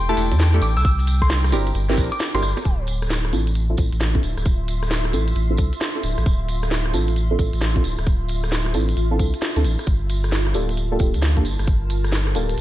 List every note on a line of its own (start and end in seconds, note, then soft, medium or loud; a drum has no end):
0.00 0.15 E1 medium
0.00 2.66 G5 medium
0.09 0.15 A3 loud
0.09 0.15 D4 medium
0.09 0.15 E4 medium
0.09 0.15 G4 medium
0.09 0.15 A4 loud
0.09 0.21 A5 medium
0.17 0.33 E1 loud
0.17 0.28 A3 medium
0.17 0.28 D4 medium
0.17 0.28 E4 medium
0.17 0.28 G4 medium
0.17 0.28 A4 medium
0.17 open hi-hat loud
0.17 tambourine medium
0.31 0.60 E2 loud
0.31 closed hi-hat medium
0.31 tambourine soft
0.31 high bongo medium
0.39 snare loud
0.39 tambourine soft
0.54 0.60 A3 medium
0.54 0.60 D4 medium
0.54 0.60 E4 medium
0.54 0.60 G4 medium
0.54 0.60 A4 medium
0.54 closed hi-hat medium
0.62 0.78 A1 medium
0.62 0.74 D6 medium
0.62 open hi-hat loud
0.62 tambourine medium
0.77 1.54 C2 medium
0.77 0.82 E6 medium
0.77 cross-stick medium
0.77 closed hi-hat soft
0.77 tambourine soft
0.85 0.94 E6 medium
0.85 kick loud
0.85 closed hi-hat medium
0.85 tambourine medium
0.99 closed hi-hat soft
0.99 tambourine soft
1.07 open hi-hat loud
1.07 tambourine medium
1.22 1.27 C6 medium
1.22 kick medium
1.22 cross-stick medium
1.22 tambourine soft
1.30 1.39 C6 medium
1.30 snare loud
1.30 tambourine medium
1.44 cross-stick medium
1.44 tambourine soft
1.52 1.72 G1 medium
1.52 1.69 C4 medium
1.52 1.69 D4 medium
1.52 1.69 E4 medium
1.52 1.69 G4 medium
1.52 1.69 A#4 loud
1.52 open hi-hat loud
1.52 tambourine medium
1.52 high bongo medium
1.67 closed hi-hat medium
1.67 tambourine soft
1.74 1.99 G1 medium
1.74 closed hi-hat medium
1.74 tambourine soft
1.89 1.96 C4 loud
1.89 1.96 D4 medium
1.89 1.96 E4 medium
1.89 1.96 G4 medium
1.89 1.96 A#4 loud
1.89 snare medium
1.89 tambourine soft
1.97 2.10 A#1 loud
1.97 2.09 C4 medium
1.97 2.09 D4 medium
1.97 2.09 E4 medium
1.97 2.09 G4 medium
1.97 2.09 A#4 medium
1.97 kick loud
1.97 open hi-hat loud
1.97 tambourine medium
2.12 2.32 D6 medium
2.12 closed hi-hat medium
2.12 tambourine soft
2.19 snare loud
2.19 tambourine medium
2.34 2.41 G1 medium
2.34 2.41 C4 medium
2.34 2.41 D4 medium
2.34 2.41 E4 medium
2.34 2.41 G4 medium
2.34 2.41 A#4 medium
2.34 2.65 C6 medium
2.34 cross-stick medium
2.34 closed hi-hat medium
2.34 tambourine soft
2.34 high bongo medium
2.42 2.55 G1 medium
2.42 cross-stick medium
2.42 open hi-hat medium
2.42 tambourine medium
2.57 cross-stick medium
2.57 closed hi-hat soft
2.57 tambourine soft
2.57 high bongo medium
2.65 3.34 D1 loud
2.65 12.61 F4 medium
2.65 kick loud
2.65 closed hi-hat medium
2.65 tambourine soft
2.87 open hi-hat loud
2.87 tambourine medium
3.02 cross-stick medium
3.02 tambourine soft
3.10 snare loud
3.10 tambourine medium
3.18 10.90 E5 medium
3.25 cross-stick medium
3.30 3.76 A1 medium
3.30 3.49 C4 loud
3.30 3.49 D4 medium
3.30 3.49 E4 medium
3.30 3.49 F4 medium
3.30 3.49 A4 loud
3.30 10.72 C6 medium
3.30 open hi-hat medium
3.30 tambourine medium
3.47 closed hi-hat medium
3.47 tambourine soft
3.55 closed hi-hat medium
3.55 tambourine soft
3.70 3.76 C4 medium
3.70 3.76 D4 medium
3.70 3.76 E4 medium
3.70 3.76 F4 medium
3.70 3.76 A4 loud
3.77 3.90 A1 loud
3.77 3.89 C4 medium
3.77 3.89 D4 medium
3.77 3.89 E4 medium
3.77 3.89 F4 medium
3.77 3.89 A4 medium
3.77 kick loud
3.77 open hi-hat loud
3.77 tambourine medium
3.92 4.21 A1 loud
3.92 closed hi-hat medium
3.92 tambourine soft
4.01 snare loud
4.01 tambourine medium
4.15 4.21 C4 medium
4.15 4.21 D4 medium
4.15 4.21 E4 medium
4.15 4.21 F4 medium
4.15 4.21 A4 medium
4.15 kick medium
4.15 closed hi-hat soft
4.23 4.35 D1 medium
4.23 open hi-hat medium
4.23 tambourine medium
4.37 5.15 D1 medium
4.37 cross-stick medium
4.37 closed hi-hat soft
4.37 tambourine soft
4.45 kick loud
4.45 closed hi-hat medium
4.45 tambourine medium
4.68 open hi-hat loud
4.68 tambourine loud
4.83 cross-stick medium
4.83 tambourine soft
4.91 snare loud
4.91 tambourine medium
5.05 cross-stick medium
5.13 5.33 A1 medium
5.13 5.30 C4 medium
5.13 5.30 D4 medium
5.13 5.30 E4 medium
5.13 5.30 F4 medium
5.13 5.30 A4 loud
5.13 open hi-hat medium
5.13 tambourine medium
5.28 closed hi-hat medium
5.28 tambourine soft
5.35 5.60 A1 medium
5.35 closed hi-hat medium
5.35 tambourine soft
5.50 5.57 C4 loud
5.50 5.57 D4 medium
5.50 5.57 E4 medium
5.50 5.57 F4 medium
5.50 5.57 A4 loud
5.57 5.71 C2 loud
5.57 5.70 C4 medium
5.57 5.70 D4 medium
5.57 5.70 E4 medium
5.57 5.70 F4 medium
5.57 5.70 A4 medium
5.57 kick loud
5.57 open hi-hat loud
5.57 tambourine loud
5.73 closed hi-hat medium
5.73 tambourine soft
5.81 snare loud
5.81 tambourine soft
5.95 6.02 C4 medium
5.95 6.02 D4 medium
5.95 6.02 E4 medium
5.95 6.02 F4 medium
5.95 6.02 A4 medium
5.95 closed hi-hat soft
6.03 6.16 D1 medium
6.03 open hi-hat medium
6.03 tambourine medium
6.18 6.25 A1 medium
6.18 cross-stick medium
6.18 closed hi-hat soft
6.18 tambourine soft
6.26 6.95 D1 medium
6.26 kick loud
6.26 closed hi-hat medium
6.26 tambourine medium
6.48 open hi-hat loud
6.48 tambourine medium
6.63 cross-stick medium
6.63 tambourine soft
6.71 snare loud
6.71 tambourine soft
6.86 cross-stick medium
6.94 7.37 A1 medium
6.94 7.10 C4 loud
6.94 7.10 D4 medium
6.94 7.10 E4 medium
6.94 7.10 F4 medium
6.94 7.10 A4 loud
6.94 open hi-hat medium
6.94 tambourine loud
7.08 closed hi-hat medium
7.08 tambourine soft
7.16 closed hi-hat medium
7.16 tambourine medium
7.31 7.37 C4 loud
7.31 7.37 D4 medium
7.31 7.37 E4 medium
7.31 7.37 F4 medium
7.31 7.37 A4 loud
7.39 7.51 A1 loud
7.39 7.50 C4 medium
7.39 7.50 D4 medium
7.39 7.50 E4 medium
7.39 7.50 F4 medium
7.39 7.50 A4 medium
7.39 kick loud
7.39 open hi-hat loud
7.39 tambourine medium
7.53 7.82 A1 loud
7.53 closed hi-hat medium
7.53 tambourine soft
7.62 snare loud
7.62 tambourine medium
7.76 7.82 C4 medium
7.76 7.82 D4 medium
7.76 7.82 E4 medium
7.76 7.82 F4 medium
7.76 7.82 A4 medium
7.76 kick medium
7.76 closed hi-hat soft
7.84 7.96 D1 medium
7.84 open hi-hat medium
7.84 tambourine loud
7.98 8.76 D1 medium
7.98 cross-stick medium
7.98 closed hi-hat soft
7.98 tambourine soft
8.07 kick loud
8.07 closed hi-hat medium
8.07 tambourine medium
8.29 open hi-hat loud
8.29 tambourine medium
8.44 cross-stick medium
8.44 tambourine soft
8.52 snare loud
8.52 tambourine soft
8.66 cross-stick medium
8.74 8.94 A1 medium
8.74 8.91 C4 loud
8.74 8.91 D4 medium
8.74 8.91 E4 medium
8.74 8.91 F4 medium
8.74 8.91 A4 loud
8.74 open hi-hat medium
8.74 tambourine loud
8.89 closed hi-hat medium
8.89 tambourine soft
8.97 9.21 A1 medium
8.97 closed hi-hat medium
8.97 tambourine medium
9.11 9.18 C4 medium
9.11 9.18 D4 medium
9.11 9.18 E4 medium
9.11 9.18 F4 medium
9.11 9.18 A4 loud
9.19 9.31 C2 loud
9.19 9.30 C4 medium
9.19 9.30 D4 medium
9.19 9.30 E4 medium
9.19 9.30 F4 medium
9.19 9.30 A4 medium
9.19 kick loud
9.19 open hi-hat medium
9.19 tambourine loud
9.34 closed hi-hat medium
9.34 tambourine soft
9.42 snare loud
9.42 tambourine medium
9.56 9.66 D2 medium
9.56 9.63 C4 medium
9.56 9.63 D4 medium
9.56 9.63 E4 medium
9.56 9.63 F4 medium
9.56 9.63 A4 medium
9.56 closed hi-hat soft
9.56 tambourine soft
9.64 9.77 A1 medium
9.64 open hi-hat medium
9.64 tambourine medium
9.79 cross-stick medium
9.79 closed hi-hat soft
9.79 tambourine soft
9.86 10.56 G1 loud
9.86 kick loud
9.86 closed hi-hat medium
9.86 tambourine soft
10.09 open hi-hat loud
10.09 tambourine medium
10.24 cross-stick medium
10.24 tambourine soft
10.32 snare loud
10.32 tambourine soft
10.46 12.61 A5 medium
10.46 cross-stick medium
10.54 10.98 D1 medium
10.54 10.71 A#3 medium
10.54 10.71 D4 medium
10.54 10.71 F4 medium
10.54 10.71 G4 medium
10.54 10.71 A4 loud
10.54 open hi-hat medium
10.54 tambourine medium
10.69 closed hi-hat medium
10.69 tambourine soft
10.74 12.61 A#4 medium
10.74 closed hi-hat medium
10.74 tambourine medium
10.92 10.98 A#3 medium
10.92 10.98 D4 medium
10.92 10.98 F4 medium
10.92 10.98 G4 medium
10.92 10.98 A4 loud
10.99 11.16 D1 medium
10.99 11.11 A#3 medium
10.99 11.11 A4 medium
10.99 kick loud
10.99 open hi-hat loud
10.99 tambourine medium
11.14 11.43 D2 medium
11.14 closed hi-hat medium
11.14 tambourine soft
11.22 snare loud
11.22 tambourine soft
11.37 11.43 A#3 medium
11.37 11.43 D4 medium
11.37 11.43 F4 medium
11.37 11.43 G4 medium
11.37 11.43 A4 medium
11.37 kick medium
11.37 closed hi-hat soft
11.45 11.57 G1 medium
11.45 open hi-hat medium
11.45 tambourine medium
11.59 12.37 G1 medium
11.59 cross-stick medium
11.59 closed hi-hat soft
11.59 tambourine soft
11.68 kick loud
11.68 closed hi-hat medium
11.68 tambourine soft
11.90 open hi-hat loud
11.90 tambourine medium
12.04 cross-stick medium
12.04 tambourine soft
12.12 snare loud
12.12 tambourine soft
12.27 cross-stick medium
12.35 12.55 D1 medium
12.35 12.52 A#3 loud
12.35 12.52 D4 medium
12.35 12.52 F4 medium
12.35 12.52 G4 medium
12.35 12.52 A4 loud
12.35 open hi-hat medium
12.35 tambourine medium
12.49 closed hi-hat medium
12.49 tambourine soft
12.58 12.61 D1 medium
12.58 closed hi-hat medium